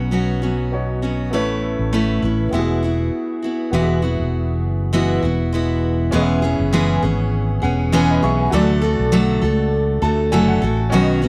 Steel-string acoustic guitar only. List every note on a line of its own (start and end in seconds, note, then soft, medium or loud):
0.00 0.10 F#3 soft
0.00 0.11 B3 soft
0.00 0.12 C#4 soft
0.00 0.12 F#4 medium
0.11 0.42 F#3 medium
0.11 0.42 B3 medium
0.11 0.42 C#4 medium
0.11 0.41 F#4 medium
0.42 1.03 F#3 soft
0.42 1.04 B3 medium
0.42 1.02 C#4 medium
0.42 1.01 F#4 medium
1.02 1.32 F#3 soft
1.02 1.33 B3 medium
1.02 1.32 C#4 medium
1.02 1.32 F#4 medium
1.33 1.91 A3 medium
1.33 1.92 C#4 medium
1.33 1.94 E4 medium
1.33 1.94 B4 medium
1.93 2.23 A3 medium
1.93 2.23 C#4 medium
1.93 2.23 E4 medium
1.93 2.21 B4 medium
2.22 2.53 C#4 soft
2.22 2.53 E4 soft
2.22 2.53 B4 soft
2.53 2.83 G#3 medium
2.53 2.83 B3 medium
2.53 2.83 E4 medium
2.53 2.81 F#4 medium
2.83 3.45 B3 soft
2.83 3.44 E4 soft
2.83 3.42 F#4 soft
3.42 3.73 B3 soft
3.42 3.73 E4 medium
3.42 3.73 F#4 medium
3.73 4.03 E3 medium
3.73 4.03 G#3 medium
3.73 4.03 B3 medium
3.73 4.02 E4 medium
3.73 4.01 F#4 medium
4.02 4.93 B3 soft
4.02 4.94 E4 soft
4.02 4.93 F#4 medium
4.93 5.23 E3 medium
4.93 5.23 G#3 medium
4.93 5.23 B3 loud
4.93 5.23 E4 medium
4.93 5.21 F#4 loud
5.22 5.53 B3 soft
5.22 5.54 E4 soft
5.22 5.53 F#4 soft
5.53 6.12 G#3 medium
5.53 6.13 B3 medium
5.53 6.13 E4 medium
5.53 6.14 F#4 medium
6.12 6.43 E3 medium
6.12 6.43 G#3 medium
6.12 6.43 B3 medium
6.12 6.43 C#4 medium
6.12 6.41 G#4 medium
6.42 6.72 B3 medium
6.42 6.73 C#4 medium
6.42 6.73 G#4 medium
6.73 7.03 E3 medium
6.73 7.03 G#3 loud
6.73 7.03 B3 loud
6.73 7.03 C#4 medium
6.73 7.01 G#4 loud
7.02 7.63 B3 soft
7.02 7.62 C#4 soft
7.02 7.61 G#4 medium
7.62 7.92 B3 soft
7.62 7.92 C#4 medium
7.62 7.92 G#4 medium
7.92 8.23 E3 medium
7.92 8.23 G#3 medium
7.92 8.23 B3 loud
7.92 8.23 C#4 loud
7.92 8.21 G#4 loud
8.22 8.53 B3 soft
8.22 8.53 C#4 medium
8.22 8.53 G#4 medium
8.52 8.82 D3 medium
8.52 8.83 F#3 medium
8.52 8.83 A3 medium
8.52 8.82 F#4 loud
8.52 8.80 A4 loud
8.81 9.12 A3 medium
8.81 9.12 F#4 medium
8.81 9.12 A4 medium
9.12 9.42 D3 medium
9.12 9.42 F#3 loud
9.12 9.43 A3 loud
9.12 9.42 F#4 medium
9.12 9.40 A4 loud
9.41 10.03 A3 soft
9.41 10.03 F#4 medium
9.41 10.01 A4 medium
10.02 10.32 A3 medium
10.02 10.32 F#4 medium
10.02 10.32 A4 medium
10.32 10.62 D3 medium
10.32 10.62 F#3 medium
10.32 10.62 A3 medium
10.32 10.62 F#4 medium
10.32 10.60 A4 loud
10.62 10.93 A3 medium
10.62 10.93 F#4 medium
10.62 10.92 A4 medium
10.92 11.22 B2 medium
10.92 11.22 D#3 loud
10.92 11.22 F#3 medium
10.92 11.22 B3 medium
10.92 11.21 C#4 loud
10.92 11.21 F#4 loud
11.22 11.28 F#3 medium
11.22 11.28 B3 medium
11.22 11.28 C#4 medium
11.22 11.28 F#4 medium